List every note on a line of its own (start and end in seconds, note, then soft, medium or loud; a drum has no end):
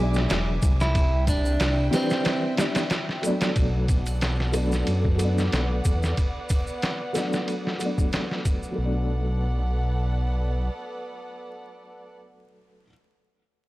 0.00 0.27 B1 loud
0.00 0.91 F#3 medium
0.00 0.93 G#3 medium
0.00 0.92 B3 medium
0.00 0.94 B3 medium
0.00 0.96 D4 loud
0.00 0.92 E5 medium
0.00 0.92 G#5 medium
0.00 0.91 D6 medium
0.14 snare medium
0.14 maracas soft
0.29 0.59 E1 loud
0.29 snare loud
0.29 ride medium
0.29 maracas soft
0.62 1.58 C2 loud
0.62 kick loud
0.62 ride medium
0.62 maracas medium
0.80 1.24 E4 medium
0.80 snare medium
0.80 maracas medium
0.94 3.53 E5 medium
0.94 3.53 G5 medium
0.94 kick loud
0.94 ride medium
0.94 maracas soft
1.27 1.88 D4 loud
1.27 kick loud
1.27 ride medium
1.27 triangle medium
1.27 maracas medium
1.45 triangle medium
1.45 maracas medium
1.60 1.90 C2 medium
1.60 snare loud
1.60 ride medium
1.60 maracas soft
1.91 2.54 E3 loud
1.91 2.54 G3 medium
1.91 2.53 C4 medium
1.91 2.55 B4 medium
1.91 snare soft
1.91 ride medium
1.91 triangle medium
1.91 maracas medium
1.95 2.56 D4 loud
2.10 snare medium
2.10 maracas medium
2.25 snare loud
2.25 ride medium
2.25 maracas soft
2.56 2.81 E3 medium
2.56 2.82 G3 medium
2.56 2.82 B3 medium
2.56 snare loud
2.56 ride medium
2.56 maracas medium
2.60 2.83 D4 medium
2.75 snare loud
2.75 ride medium
2.75 maracas medium
2.90 snare loud
2.90 ride medium
2.90 maracas soft
3.09 snare soft
3.22 3.88 F#3 loud
3.22 3.88 A3 medium
3.22 3.89 B3 medium
3.22 ride medium
3.22 maracas loud
3.26 3.90 D4 loud
3.41 snare loud
3.41 ride medium
3.41 maracas soft
3.56 4.84 B1 medium
3.56 8.74 B3 medium
3.56 6.14 A4 medium
3.56 8.74 D5 medium
3.56 8.74 F#5 medium
3.56 kick loud
3.56 ride medium
3.56 maracas soft
3.88 kick medium
3.88 ride medium
3.88 maracas medium
4.06 ride soft
4.06 triangle medium
4.06 maracas medium
4.21 snare loud
4.21 ride medium
4.21 maracas soft
4.40 snare soft
4.52 5.14 F#3 medium
4.52 5.15 A3 medium
4.52 5.16 B3 medium
4.52 ride medium
4.52 triangle medium
4.52 maracas medium
4.57 5.17 D4 loud
4.72 snare soft
4.72 maracas medium
4.87 5.50 F#2 loud
4.87 ride medium
4.87 maracas soft
5.05 kick medium
5.15 6.13 F#3 medium
5.15 6.15 A3 medium
5.15 maracas medium
5.19 6.16 B3 medium
5.19 ride medium
5.24 6.18 D4 medium
5.38 snare soft
5.38 maracas soft
5.52 5.81 B1 medium
5.52 snare loud
5.52 ride medium
5.52 maracas soft
5.85 6.14 E2 loud
5.85 kick medium
5.85 ride medium
5.85 maracas medium
6.03 snare soft
6.03 maracas soft
6.17 kick medium
6.17 ride medium
6.17 maracas soft
6.49 kick loud
6.49 ride medium
6.49 triangle medium
6.49 maracas medium
6.67 maracas soft
6.82 snare loud
6.82 ride medium
6.82 maracas soft
7.13 7.75 F#3 medium
7.13 7.76 A3 medium
7.13 7.77 B3 medium
7.13 snare soft
7.13 ride medium
7.13 maracas medium
7.17 7.78 D4 medium
7.33 snare soft
7.33 maracas soft
7.48 ride medium
7.48 maracas soft
7.67 snare soft
7.76 8.70 F#3 medium
7.76 8.74 A3 medium
7.76 maracas medium
7.81 8.77 B3 medium
7.81 ride medium
7.85 8.78 D4 medium
7.98 kick medium
7.98 maracas soft
8.12 snare loud
8.12 ride medium
8.12 maracas soft
8.31 snare soft
8.45 kick medium
8.45 ride medium
8.45 maracas medium
8.63 maracas soft
8.71 12.81 F#3 medium
8.75 10.70 B1 medium
8.75 12.83 A3 medium
8.75 12.14 B3 medium
8.75 12.14 A4 medium
8.75 12.14 D5 medium
8.75 12.14 F#5 medium
8.80 12.86 B3 medium
8.84 12.88 D4 medium